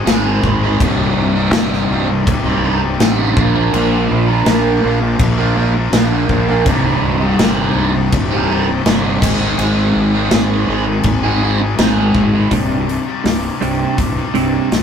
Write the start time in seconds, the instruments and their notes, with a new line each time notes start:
Already playing: string machine C5 G#5 D#6
0.05 fingered electric bass G#1, distorted electric guitar G#2 D#3 G#3 C4 D#4 G#4, snare, crash
0.25 overdriven electric guitar G#3 C4 D#4 G#4
0.43 fingered electric bass G#1, distorted electric guitar G#3 C4 D#4 G#4, kick
0.61 distorted electric guitar G#3 C4 D#4 G#4
0.79 fingered electric bass C1, distorted electric guitar C2 G2 C3 G3 D#4, kick, crash
0.84 string machine G5
0.98 distorted electric guitar C3 G3 D#4
1.17 fingered electric bass C1
1.34 distorted electric guitar C3 G3 D#4
1.53 fingered electric bass G1, distorted electric guitar C2 G2 C3 G3, snare, crash
1.57 distorted electric guitar D#4
1.73 snare
1.88 fingered electric bass C1, distorted electric guitar G2 C3 G3
1.92 distorted electric guitar D#4
2.08 distorted electric guitar C3 G3 D#4, muted overdriven electric guitar stroke
2.27 fingered electric bass C1, kick, crash
2.45 distorted electric guitar C3 G3 D#4
2.63 distorted electric guitar G2 C3 G3 D#4
2.80 distorted electric guitar C3 G3 D#4, muted overdriven electric guitar stroke
2.98 fingered electric bass A1, distorted electric guitar C2 G2 C3 G3 D#4, snare, crash
3.18 overdriven electric guitar C3 G3 D#4
3.35 fingered electric bass A#1, distorted electric guitar A#2 F3 A#3 D4 F4, string machine A#5 D6, kick
3.39 distorted electric guitar A#4
3.53 distorted electric guitar A#3 D4 F4 A#4
3.72 fingered electric bass A#1, distorted electric guitar A#2 F3 A#3 D4 F4 A#4, crash
3.90 distorted electric guitar A#3 D4 F4 A#4
4.11 fingered electric bass A#1
4.26 distorted electric guitar A#3 D4 F4 A#4
4.45 fingered electric bass A#1, distorted electric guitar A#2 F3 A#3 D4 F4 A#4, snare, crash
4.81 fingered electric bass A#1, distorted electric guitar A#3 D4 F4 A#4
5.00 distorted electric guitar A#3 D4 F4 A#4, muted overdriven electric guitar stroke
5.19 fingered electric bass A#1, kick, crash
5.38 distorted electric guitar A#3 D4 F4 A#4
5.55 distorted electric guitar A#3 D4 F4 A#4
5.73 distorted electric guitar A#3 D4 F4 A#4, muted overdriven electric guitar stroke
5.92 fingered electric bass A#1, distorted electric guitar A#2 F3 A#3 D4 F4 A#4, snare, crash
6.10 overdriven electric guitar A#3 D4 F4 A#4
6.28 fingered electric bass A#1, distorted electric guitar A#3 D4 F4 A#4, kick
6.45 distorted electric guitar A#3 D4 F4 A#4
6.63 fingered electric bass C1, distorted electric guitar C2 G2 C3 G3 D#4, string machine C5 G5 D#6, kick, crash
6.83 distorted electric guitar C3 G3 D#4
7.02 fingered electric bass C1
7.20 distorted electric guitar C3 G3 D#4
7.37 fingered electric bass G1, distorted electric guitar C2 G2 C3 G3, snare, crash
7.41 distorted electric guitar D#4
7.73 fingered electric bass C1, distorted electric guitar G2 C3 G3 D#4
7.92 distorted electric guitar C3 G3 D#4, muted overdriven electric guitar stroke
8.12 fingered electric bass C1, kick, crash
8.28 distorted electric guitar G3 D#4
8.32 distorted electric guitar C3
8.47 distorted electric guitar G2 C3 G3 D#4
8.64 distorted electric guitar C3 G3 D#4
8.69 muted overdriven electric guitar stroke
8.83 fingered electric bass G1, distorted electric guitar C2 G2 C3 G3 D#4, snare, crash
9.04 overdriven electric guitar C3 G3 D#4
9.19 fingered electric bass G#1, distorted electric guitar G#2 D#3 G#3 C4 D#4 G#4, kick, crash
9.25 string machine G#5
9.39 distorted electric guitar G#3 C4 D#4 G#4
9.56 fingered electric bass G#1, distorted electric guitar G#2 D#3 G#3 C4 D#4 G#4, crash
9.74 distorted electric guitar G#3 C4 D#4 G#4
9.96 fingered electric bass G#1
10.11 distorted electric guitar G#3 C4 D#4 G#4
10.29 fingered electric bass G#1, distorted electric guitar G#2 D#3 G#3 C4 D#4 G#4, snare, crash
10.66 fingered electric bass G#1, distorted electric guitar G#3 C4 D#4
10.70 distorted electric guitar G#4
10.84 distorted electric guitar G#3 C4 D#4 G#4, muted overdriven electric guitar stroke
11.03 fingered electric bass G#1, kick, crash
11.22 distorted electric guitar G#3 C4 D#4 G#4
11.39 distorted electric guitar G#3 C4 D#4 G#4
11.58 distorted electric guitar G#3 C4 D#4 G#4, muted overdriven electric guitar stroke
11.75 fingered electric bass G#1, distorted electric guitar G#2 D#3 G#3 C4 D#4 G#4, snare, crash
11.97 overdriven electric guitar G#3 C4 D#4 G#4
12.13 fingered electric bass G#1, distorted electric guitar G#3 C4 D#4 G#4, kick
12.32 distorted electric guitar G#3 C4 D#4 G#4
12.50 fingered electric bass C1, distorted electric guitar C2 G2 C3 G3, kick, open hi-hat
12.54 distorted electric guitar D#4
12.69 distorted electric guitar C3 G3 D#4
12.87 clean electric guitar C2 G2, open hi-hat
13.05 distorted electric guitar G3 D#4
13.09 distorted electric guitar C3
13.23 fingered electric bass C1, distorted electric guitar C2 G2 C3 G3 D#4, snare, open hi-hat
13.60 fingered electric bass C1, clean electric guitar C2, distorted electric guitar G2 C3 G3, open hi-hat
13.64 distorted electric guitar D#4
13.80 distorted electric guitar C3 G3 D#4
13.98 fingered electric bass C1, clean electric guitar C2 G2, kick, open hi-hat
14.17 distorted electric guitar C3 G3 D#4
14.34 fingered electric bass C1, clean electric guitar C2, distorted electric guitar G2 C3 G3, open hi-hat
14.38 distorted electric guitar D#4
14.53 distorted electric guitar C3 G3 D#4
14.71 fingered electric bass C1, distorted electric guitar C2 G2 C3 G3 D#4, snare, open hi-hat